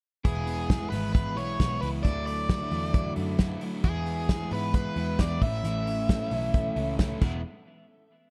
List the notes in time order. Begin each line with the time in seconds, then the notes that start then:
0.25 E1 E3 G#3 B3 E4 G#4, kick, closed hi-hat
0.47 B3, open hi-hat
0.70 G#3, kick, snare, closed hi-hat
0.80 G#3 B3 E4
0.90 G#1 E3 G#3 B4, open hi-hat
0.94 B3 E4
1.13 G#3 B4, kick, closed hi-hat
1.36 B1 E3 G#3 B3 E4 C#5, open hi-hat
1.59 B1 E3 G#3 B3 E4, kick, snare, closed hi-hat
1.81 C#2 E3 G#3 B3 B4, open hi-hat
1.85 E4
2.03 D2 D3 F#3 A3 E4 D5, kick, closed hi-hat
2.26 A3 D5, open hi-hat
2.49 F#3, kick, snare, closed hi-hat
2.61 F#3 A3 E4
2.71 E2 D3 F#3 A3 E4, open hi-hat
2.94 F#3, kick, closed hi-hat
3.16 F#2 D3 F#3 A3 E4, open hi-hat
3.39 D3 F#3 A3 E4, kick, snare, closed hi-hat
3.61 D3 F#3 A3 E4, open hi-hat
3.84 E2 E3 G#3 B3 E4 G#4, kick, closed hi-hat
4.06 B3, open hi-hat
4.29 G#3, kick, snare, closed hi-hat
4.40 G#3 B3 E4
4.51 G#2 E3 G#3 B3 E4 B4, open hi-hat
4.74 G#3 B4, kick, closed hi-hat
4.96 E2 E3 G#3 B3, open hi-hat
5.00 E4
5.19 E2 E3 G#3 B3 D5, kick, snare, closed hi-hat
5.23 E4
5.42 A1 A2 E3 A3 C#4 E5, kick, open hi-hat
5.46 E4
5.64 A1 A2 E3 A3 C#4 E4, closed hi-hat
5.87 C#4, open hi-hat
6.09 A3, kick, snare, closed hi-hat
6.20 A3 C#4 E4
6.31 B1 E3 A3 C#4 E4, open hi-hat
6.54 A3, kick, closed hi-hat
6.76 C#2 E3 A3 C#4 E4, open hi-hat
6.98 E3 A3 C#4 E4, kick, snare, closed hi-hat
7.21 E1 E3 G#3 B3 E4, kick, crash